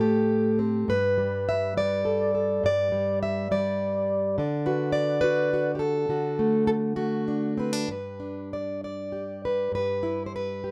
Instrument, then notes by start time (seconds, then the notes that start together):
steel-string acoustic guitar
Already playing: A2 C4 A4
0.00 A3 G4
0.59 C4
0.88 G2 B4
1.18 G3
1.49 E5
1.77 G3 D5
2.05 A4
2.35 A4
2.64 G2 D5
2.92 G3
3.23 E5
3.51 G3 D5
4.38 D3 D5
4.66 F#4 B4
4.92 D5
5.21 F#4 B4
5.54 F#4
5.75 G4
5.79 A4
6.09 D3 F#4
6.39 A3
6.67 A4
6.96 A3 F#4
7.28 D4
7.58 C4 B4
7.73 D4
7.88 G2 B4
8.20 D4
8.53 D5
8.84 D5
9.12 G4
9.45 B4
9.72 G2 B4
10.03 E4
10.26 C5
10.36 B4
10.64 G4